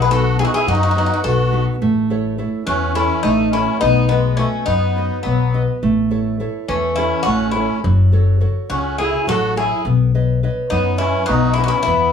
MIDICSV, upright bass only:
0, 0, Header, 1, 2, 480
1, 0, Start_track
1, 0, Tempo, 574163
1, 1513, Time_signature, 7, 3, 24, 8
1, 10136, End_track
2, 0, Start_track
2, 0, Title_t, "Upright bass"
2, 0, Program_c, 0, 32
2, 0, Note_on_c, 0, 35, 109
2, 348, Note_off_c, 0, 35, 0
2, 562, Note_on_c, 0, 42, 95
2, 895, Note_off_c, 0, 42, 0
2, 1043, Note_on_c, 0, 35, 81
2, 1375, Note_off_c, 0, 35, 0
2, 1520, Note_on_c, 0, 33, 99
2, 2021, Note_off_c, 0, 33, 0
2, 2238, Note_on_c, 0, 40, 94
2, 2571, Note_off_c, 0, 40, 0
2, 2713, Note_on_c, 0, 33, 86
2, 3048, Note_off_c, 0, 33, 0
2, 3193, Note_on_c, 0, 35, 93
2, 3695, Note_off_c, 0, 35, 0
2, 3907, Note_on_c, 0, 42, 90
2, 4243, Note_off_c, 0, 42, 0
2, 4387, Note_on_c, 0, 35, 80
2, 4723, Note_off_c, 0, 35, 0
2, 4871, Note_on_c, 0, 33, 92
2, 5373, Note_off_c, 0, 33, 0
2, 5591, Note_on_c, 0, 40, 92
2, 5925, Note_off_c, 0, 40, 0
2, 6074, Note_on_c, 0, 33, 83
2, 6408, Note_off_c, 0, 33, 0
2, 6555, Note_on_c, 0, 30, 109
2, 7057, Note_off_c, 0, 30, 0
2, 7273, Note_on_c, 0, 37, 94
2, 7607, Note_off_c, 0, 37, 0
2, 7751, Note_on_c, 0, 33, 91
2, 8086, Note_off_c, 0, 33, 0
2, 8233, Note_on_c, 0, 35, 103
2, 8737, Note_off_c, 0, 35, 0
2, 8960, Note_on_c, 0, 42, 92
2, 9293, Note_off_c, 0, 42, 0
2, 9438, Note_on_c, 0, 35, 83
2, 9772, Note_off_c, 0, 35, 0
2, 9919, Note_on_c, 0, 40, 104
2, 10136, Note_off_c, 0, 40, 0
2, 10136, End_track
0, 0, End_of_file